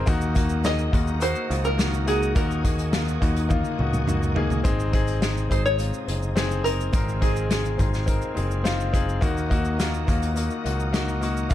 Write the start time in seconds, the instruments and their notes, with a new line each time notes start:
Already playing: tonewheel organ D#4
0.06 picked electric bass D#2, grand piano D#3 A#3 D#4 F#4, tonewheel organ D#3 F#4 A#4, kick, closed hi-hat, shaker
0.21 shaker
0.35 grand piano A#3 D#4 F#4, kick, closed hi-hat, shaker
0.49 shaker
0.63 grand piano A#3 D#4 G#4, five-string banjo D#5, snare, closed hi-hat, shaker
0.79 shaker
0.92 picked electric bass D#2, grand piano A#3 D#4 F#4, kick, closed hi-hat
1.07 shaker
1.20 grand piano A#3 D#4 F#4, five-string banjo C5, closed hi-hat, shaker
1.35 shaker
1.49 picked electric bass C#2, grand piano A#3 D#4 F4, closed hi-hat
1.65 five-string banjo A#4, shaker
1.77 grand piano A#3 D#4 F#4, snare, closed hi-hat, shaker
1.94 shaker
2.06 grand piano A#3 D#4 F#4, five-string banjo G#4, closed hi-hat
2.23 shaker
2.35 picked electric bass D#2, grand piano D#3 A#3 D#4 F#4, tonewheel organ G#4, five-string banjo A#4, kick, closed hi-hat, shaker
2.51 shaker
2.64 grand piano A#3 D#4 G#4, kick, closed hi-hat, shaker
2.79 closed hi-hat, shaker
2.92 grand piano A#3 D#4 F4, snare, closed hi-hat, shaker
3.08 shaker
3.21 picked electric bass D#2, grand piano A#3 D#4 F#4, kick, closed hi-hat
3.36 closed hi-hat, shaker
3.49 grand piano A#3 D#4 F4, kick, high tom, shaker
3.65 shaker
3.78 picked electric bass C#2, grand piano A#3 D#4 F#4, mid tom
3.93 mid tom, shaker
4.07 grand piano A#3 D#4 F#4, mid tom, shaker
4.23 shaker
4.35 grand piano A#3 D#4 G#4, floor tom
4.50 floor tom, shaker
4.64 picked electric bass G#1, grand piano G#2 C4 D#4 G#4, tonewheel organ C3 G#3 D#4, kick, closed hi-hat, shaker
4.80 shaker
4.93 grand piano C4 D#4 G#4, kick, closed hi-hat
5.08 closed hi-hat, shaker
5.21 grand piano C4 D#4 G#4, snare, closed hi-hat, shaker
5.37 shaker
5.49 picked electric bass G#1, grand piano C4 D#4 G#4, five-string banjo C5, kick, closed hi-hat, shaker
5.66 five-string banjo C#5, shaker
5.79 grand piano C4 D#4 F4, closed hi-hat, shaker
5.94 shaker
6.07 picked electric bass F#1, grand piano C4 D#4 G#4, closed hi-hat
6.23 shaker
6.36 grand piano C4 D#4 G#4, snare, closed hi-hat, shaker
6.51 shaker
6.64 grand piano C4 D#4 G#4, five-string banjo A#4, closed hi-hat, shaker
6.80 shaker
6.92 picked electric bass G#1, grand piano G#2 C4 D#4 A#4, tonewheel organ F4, kick, closed hi-hat, shaker
7.09 shaker
7.21 grand piano C4 D#4 G#4, five-string banjo G#4, kick, closed hi-hat
7.36 shaker
7.49 grand piano C4 D#4 G#4, snare, closed hi-hat, shaker
7.65 shaker
7.78 picked electric bass G#1, grand piano C4 D#4 G#4, kick, closed hi-hat, shaker
7.94 snare, shaker
8.06 grand piano C4 D#4 A#4, kick, closed hi-hat, shaker
8.22 shaker
8.35 picked electric bass F#1, grand piano C4 D#4 G#4, closed hi-hat
8.51 shaker
8.64 grand piano C4 D#4 F4, snare, closed hi-hat, shaker
8.80 shaker
8.93 grand piano C4 D#4 G#4, kick, closed hi-hat, shaker
9.09 shaker
9.21 picked electric bass D#2, grand piano D#3 A#3 D#4 F#4, tonewheel organ D#3 D#4 F#4 A#4, kick, closed hi-hat, shaker
9.37 shaker
9.50 grand piano A#3 D#4 F#4, kick, closed hi-hat
9.65 shaker
9.78 grand piano A#3 D#4 F4, snare, closed hi-hat, shaker
9.94 shaker
10.07 picked electric bass D#2, grand piano A#3 D#4 F4, kick, closed hi-hat, shaker
10.23 closed hi-hat, shaker
10.35 grand piano A#3 D#4 F#4, closed hi-hat, shaker
10.50 shaker
10.64 picked electric bass C#2, grand piano A#3 D#4 F#4, closed hi-hat
10.80 shaker
10.93 grand piano A#3 D#4 F#4, snare, closed hi-hat, shaker
11.08 shaker
11.21 grand piano A#3 D#4 F#4, closed hi-hat, shaker
11.37 shaker
11.49 picked electric bass D#2, grand piano D#3 A#3 D#4, kick, closed hi-hat, shaker